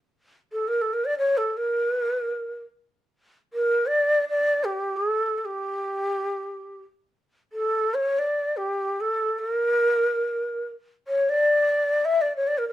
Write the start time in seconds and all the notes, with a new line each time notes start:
0.53 A4
0.68 A#4
0.82 A4
0.93 A#4
1.05 D5
1.18 C#5
1.37 A4
1.57 A#4
3.53 A#4
3.86 D5
4.29 D5
4.64 G4
4.97 A4
5.38 A4
5.45 G4
7.53 A4
7.94 C#5
8.19 D5
8.57 G4
9.01 A4
9.39 A4
9.51 A#4
11.08 C#5
11.29 D5
12.05 E5
12.21 D5
12.36 C#5
12.47 D5
12.58 A#4
12.68 A#4